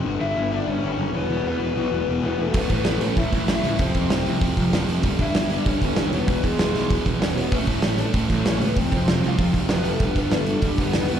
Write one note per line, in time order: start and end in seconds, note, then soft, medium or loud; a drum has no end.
0.04 0.17 G1 medium
0.04 0.19 G2 medium
0.04 0.19 D3 loud
0.04 0.19 G3 loud
0.20 0.32 G1 medium
0.20 0.34 G2 medium
0.20 0.35 D3 medium
0.20 0.36 G3 loud
0.20 0.50 E4 medium
0.20 0.53 E5 loud
0.35 0.59 G1 medium
0.35 0.51 G2 medium
0.35 0.51 D3 medium
0.35 0.50 G3 medium
0.52 0.65 G2 medium
0.52 0.65 D3 medium
0.52 0.67 G3 loud
0.52 0.68 D4 medium
0.52 0.69 D5 medium
0.66 0.79 G1 medium
0.66 0.83 G2 medium
0.66 0.82 D3 loud
0.66 0.81 G3 loud
0.66 1.12 C#4 medium
0.70 1.16 C#5 loud
0.82 0.94 G1 medium
0.82 0.96 G2 medium
0.82 0.96 D3 medium
0.82 0.97 G3 medium
0.97 1.09 F#1 medium
0.97 1.12 G2 medium
0.97 1.12 D3 medium
0.97 1.13 G3 medium
1.13 1.25 E1 medium
1.13 1.28 E2 medium
1.13 1.28 B2 loud
1.13 1.29 E3 loud
1.13 1.44 B3 medium
1.17 1.44 B4 medium
1.29 1.40 E1 loud
1.29 1.42 E2 medium
1.29 1.42 B2 loud
1.29 1.43 E3 loud
1.43 1.58 E2 medium
1.43 1.55 E2 medium
1.43 1.58 B2 loud
1.43 1.58 E3 medium
1.47 2.04 B3 medium
1.47 2.05 B4 medium
1.58 1.71 E1 medium
1.58 1.73 E2 medium
1.58 1.74 B2 medium
1.58 1.76 E3 medium
1.74 1.87 B1 medium
1.74 1.91 E2 medium
1.74 1.91 B2 loud
1.74 1.91 E3 medium
1.92 2.03 E1 medium
1.92 2.06 E2 medium
1.92 2.06 B2 medium
1.92 2.07 E3 loud
2.07 2.20 E1 medium
2.07 2.23 E2 medium
2.07 2.22 B2 medium
2.07 2.22 E3 medium
2.23 2.35 E1 medium
2.23 2.36 E2 medium
2.23 2.37 B2 medium
2.23 2.38 E3 medium
2.23 2.38 B3 medium
2.23 2.40 B4 medium
2.37 2.50 E1 medium
2.37 2.53 E2 medium
2.37 2.53 B2 medium
2.37 2.52 E3 medium
2.37 2.54 A3 medium
2.42 2.56 A4 medium
2.53 2.65 A1 medium
2.53 2.70 A2 medium
2.53 2.69 E3 loud
2.53 2.70 A3 loud
2.53 kick loud
2.53 open hi-hat medium
2.57 2.70 B3 medium
2.57 2.72 B4 medium
2.70 2.81 A1 medium
2.70 2.84 A2 medium
2.70 2.85 E3 medium
2.70 2.87 A3 loud
2.70 3.00 B3 medium
2.70 3.02 B4 medium
2.70 kick medium
2.70 open hi-hat medium
2.85 3.08 A1 medium
2.85 3.01 A2 medium
2.85 3.00 E3 medium
2.85 3.00 A3 medium
2.85 snare loud
2.85 open hi-hat medium
3.00 3.15 A2 medium
3.00 3.16 E3 medium
3.00 3.17 A3 loud
3.00 3.16 C#4 medium
3.00 3.16 C#5 medium
3.00 open hi-hat medium
3.17 3.28 A1 medium
3.17 3.32 A2 medium
3.17 3.32 E3 loud
3.17 3.31 A3 loud
3.17 3.46 E4 medium
3.17 3.49 E5 medium
3.17 kick loud
3.17 open hi-hat medium
3.32 3.43 A1 medium
3.32 3.47 A2 medium
3.32 3.46 E3 medium
3.32 3.48 A3 medium
3.32 kick medium
3.32 open hi-hat medium
3.47 3.59 A1 medium
3.47 3.63 A2 medium
3.47 3.63 E3 medium
3.47 3.63 A3 loud
3.47 3.78 E4 medium
3.47 3.78 E5 medium
3.47 snare loud
3.47 open hi-hat medium
3.64 3.75 C#2 medium
3.64 3.78 A2 medium
3.64 3.78 E3 medium
3.64 3.78 A3 medium
3.64 open hi-hat medium
3.78 3.90 F1 medium
3.78 3.94 F2 medium
3.78 3.94 C3 medium
3.78 3.94 F3 loud
3.78 4.08 C4 medium
3.78 4.10 C5 medium
3.78 kick loud
3.78 open hi-hat medium
3.94 4.06 F2 medium
3.94 4.08 F2 medium
3.94 4.09 C3 medium
3.94 4.09 F3 medium
3.94 kick medium
3.94 open hi-hat medium
4.09 4.22 F1 medium
4.09 4.27 F2 medium
4.09 4.26 C3 medium
4.09 4.25 F3 medium
4.09 4.40 C4 medium
4.09 4.39 C5 medium
4.09 snare loud
4.09 open hi-hat medium
4.26 4.37 C2 medium
4.26 4.40 F2 medium
4.26 4.41 C3 medium
4.26 4.41 F3 loud
4.26 open hi-hat medium
4.41 4.52 F1 medium
4.41 4.57 F2 medium
4.41 4.57 C3 loud
4.41 4.56 F3 loud
4.41 kick loud
4.41 open hi-hat medium
4.57 4.68 F1 medium
4.57 4.70 F2 medium
4.57 4.71 C3 medium
4.57 4.72 F3 loud
4.57 kick medium
4.57 open hi-hat medium
4.71 4.84 F1 medium
4.71 4.87 F2 medium
4.71 4.86 C3 medium
4.71 4.85 F3 loud
4.71 snare loud
4.71 open hi-hat medium
4.87 4.99 F1 medium
4.87 5.03 F2 medium
4.87 5.02 C3 medium
4.87 5.02 F3 medium
4.87 open hi-hat medium
5.03 5.15 G1 loud
5.03 5.18 G2 loud
5.03 5.18 D3 medium
5.03 5.17 G3 loud
5.03 kick loud
5.03 open hi-hat medium
5.18 5.30 G1 medium
5.18 5.34 G2 medium
5.18 5.34 D3 medium
5.18 5.35 G3 medium
5.18 5.48 E4 medium
5.18 5.49 E5 loud
5.18 kick medium
5.18 open hi-hat medium
5.35 5.57 G1 medium
5.35 5.51 G2 medium
5.35 5.50 D3 medium
5.35 5.49 G3 medium
5.35 snare loud
5.35 open hi-hat medium
5.50 5.65 G2 medium
5.50 5.65 D3 medium
5.50 5.66 G3 medium
5.50 open hi-hat medium
5.54 5.66 D4 medium
5.54 5.68 D5 medium
5.66 5.77 G1 medium
5.66 5.81 G2 medium
5.66 5.81 D3 loud
5.66 5.79 G3 loud
5.66 6.09 C#4 medium
5.66 6.14 C#5 loud
5.66 kick loud
5.66 open hi-hat medium
5.81 5.93 G1 medium
5.81 5.97 G2 medium
5.81 5.97 D3 medium
5.81 5.98 G3 medium
5.81 kick medium
5.81 open hi-hat medium
5.96 6.13 D#2 medium
5.96 6.11 G2 medium
5.96 6.12 D3 medium
5.96 6.12 G3 medium
5.96 snare loud
5.96 open hi-hat medium
6.11 6.23 E1 medium
6.11 6.28 E2 medium
6.11 6.27 B2 loud
6.11 6.27 E3 loud
6.11 6.42 B3 medium
6.11 6.42 B4 medium
6.11 open hi-hat medium
6.27 6.39 E1 loud
6.27 6.42 E2 medium
6.27 6.43 B2 medium
6.27 6.44 E3 loud
6.27 kick loud
6.27 open hi-hat medium
6.43 6.58 E2 medium
6.43 6.55 E2 medium
6.43 6.58 B2 medium
6.43 6.59 E3 loud
6.43 7.02 G#3 medium
6.43 7.02 G#4 medium
6.43 kick medium
6.43 open hi-hat medium
6.59 6.70 E1 medium
6.59 6.72 E2 medium
6.59 6.73 B2 medium
6.59 6.75 E3 medium
6.59 snare loud
6.59 open hi-hat medium
6.74 6.86 B1 medium
6.74 6.90 E2 medium
6.74 6.89 B2 medium
6.74 6.89 E3 medium
6.74 open hi-hat medium
6.90 7.01 E1 medium
6.90 7.04 E2 medium
6.90 7.05 B2 loud
6.90 7.06 E3 loud
6.90 kick loud
6.90 open hi-hat medium
7.05 7.17 E1 medium
7.05 7.21 E2 medium
7.05 7.20 B2 medium
7.05 7.19 E3 medium
7.05 kick medium
7.05 open hi-hat medium
7.20 7.32 E1 medium
7.20 7.34 E2 medium
7.20 7.35 B2 medium
7.20 7.35 E3 medium
7.20 7.36 C#4 medium
7.20 7.37 C#5 medium
7.20 snare loud
7.20 open hi-hat medium
7.35 7.52 E1 medium
7.35 7.50 E2 medium
7.35 7.51 B2 medium
7.35 7.51 E3 medium
7.35 7.52 B3 medium
7.35 7.55 B4 medium
7.35 open hi-hat medium
7.52 7.63 A1 medium
7.52 7.68 A2 medium
7.52 7.67 E3 medium
7.52 7.67 A3 loud
7.52 7.68 C#4 medium
7.52 7.67 C#5 medium
7.52 kick loud
7.52 open hi-hat medium
7.67 7.79 A1 medium
7.67 7.82 A2 medium
7.67 7.82 E3 medium
7.67 7.84 A3 medium
7.67 7.97 C#4 medium
7.67 8.00 C#5 medium
7.67 kick medium
7.67 open hi-hat medium
7.82 8.05 A1 medium
7.82 7.97 A2 medium
7.82 7.97 E3 medium
7.82 7.98 A3 medium
7.82 snare loud
7.82 open hi-hat medium
7.98 8.12 A2 medium
7.98 8.13 E3 medium
7.98 8.14 A3 loud
7.98 8.06 D4 medium
7.98 8.05 D5 medium
7.98 open hi-hat medium
8.13 8.25 A1 medium
8.13 8.30 A2 medium
8.13 8.29 E3 medium
8.13 8.29 A3 loud
8.13 kick loud
8.13 open hi-hat medium
8.30 8.41 A1 medium
8.30 8.43 A2 medium
8.30 8.43 E3 medium
8.30 8.44 A3 medium
8.30 kick medium
8.30 open hi-hat medium
8.44 8.56 A1 medium
8.44 8.59 A2 medium
8.44 8.58 E3 medium
8.44 8.57 A3 medium
8.44 8.62 C#5 medium
8.44 snare loud
8.44 open hi-hat medium
8.48 8.61 C#4 medium
8.59 8.78 C#2 medium
8.59 8.75 A2 medium
8.59 8.74 E3 medium
8.59 8.74 A3 medium
8.59 8.67 B3 medium
8.59 open hi-hat medium
8.63 8.68 B4 medium
8.75 8.88 F1 medium
8.75 8.91 F2 medium
8.75 8.90 C3 loud
8.75 8.90 F3 loud
8.75 8.91 C4 medium
8.75 8.92 C5 medium
8.75 kick loud
8.75 open hi-hat medium
8.91 9.03 F2 medium
8.91 9.05 F2 medium
8.91 9.06 C3 medium
8.91 9.06 F3 loud
8.91 9.22 C4 medium
8.91 9.25 C5 medium
8.91 kick medium
8.91 open hi-hat medium
9.06 9.18 F1 medium
9.06 9.22 F2 medium
9.06 9.22 C3 medium
9.06 9.22 F3 medium
9.06 snare loud
9.06 open hi-hat medium
9.23 9.34 C2 medium
9.23 9.37 F2 medium
9.23 9.38 C3 medium
9.23 9.38 F3 medium
9.23 9.38 F4 medium
9.23 open hi-hat medium
9.28 9.40 F5 medium
9.38 9.49 F1 medium
9.38 9.53 F2 medium
9.38 9.52 C3 medium
9.38 9.52 F3 loud
9.38 kick loud
9.38 open hi-hat medium
9.53 9.65 F1 medium
9.53 9.67 F2 medium
9.53 9.68 C3 medium
9.53 9.69 F3 loud
9.53 kick medium
9.53 open hi-hat medium
9.68 9.80 F1 medium
9.68 9.84 F2 medium
9.68 9.83 C3 medium
9.68 9.83 F3 loud
9.68 snare loud
9.68 open hi-hat medium
9.73 9.86 B3 medium
9.73 9.87 B4 loud
9.84 9.96 F1 medium
9.84 9.98 F2 medium
9.84 9.99 C3 medium
9.84 9.99 F3 medium
9.84 10.01 A3 medium
9.84 open hi-hat medium
9.89 10.01 A4 medium
9.99 10.12 G1 medium
9.99 10.16 G2 loud
9.99 10.15 D3 medium
9.99 10.15 G3 loud
9.99 kick loud
9.99 open hi-hat medium
10.04 10.16 B3 medium
10.04 10.17 B4 loud
10.16 10.27 G1 medium
10.16 10.29 G2 medium
10.16 10.30 D3 medium
10.16 10.30 G3 medium
10.16 10.31 B3 medium
10.16 10.33 B4 medium
10.16 kick medium
10.16 open hi-hat medium
10.30 10.54 G1 medium
10.30 10.46 G2 medium
10.30 10.46 D3 medium
10.30 10.45 G3 medium
10.30 10.62 A3 medium
10.30 snare loud
10.30 open hi-hat medium
10.37 10.63 A4 loud
10.46 10.60 G2 medium
10.46 10.60 D3 medium
10.46 10.61 G3 medium
10.46 open hi-hat medium
10.61 10.74 G1 medium
10.61 10.77 G2 loud
10.61 10.76 D3 medium
10.61 10.76 G3 loud
10.61 kick loud
10.61 open hi-hat medium
10.65 10.78 G3 medium
10.65 10.81 G4 medium
10.77 10.90 G1 medium
10.77 10.91 G2 medium
10.77 10.91 D3 medium
10.77 10.92 G3 medium
10.77 11.20 B3 medium
10.77 kick medium
10.77 open hi-hat medium
10.81 11.20 B4 loud
10.92 11.05 D#2 medium
10.92 11.08 G2 medium
10.92 11.08 D3 medium
10.92 11.08 G3 medium
10.92 snare loud
10.92 open hi-hat medium
11.09 11.20 E1 medium
11.09 11.20 E2 medium
11.09 11.20 B2 loud
11.09 11.20 E3 loud
11.09 open hi-hat medium